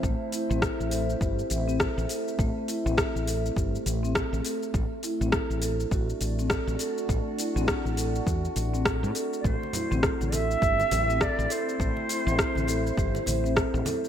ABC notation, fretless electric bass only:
X:1
M:4/4
L:1/16
Q:"Swing 16ths" 1/4=102
K:Ador
V:1 name="Fretless electric bass" clef=bass
A,,, z2 A,,, z A,,,2 z G,,, z A,,,2 z A,,, z2 | A,,, z2 A,,, z A,,,2 z G,,, z A,,,2 z A,,, z2 | A,,, z2 A,,, z A,,,2 z A,,, z A,,,2 z A,,, z2 | A,,, z2 A,,, z A,,,2 z E,, z A,,,3 A,, z2 |
A,,, z2 A,,, z A,,,2 z G,,, z A,,,2 z A,,, z2 | A,,, z2 A,,, z A,,,2 z G,,, z A,,,2 z A,,, z2 |]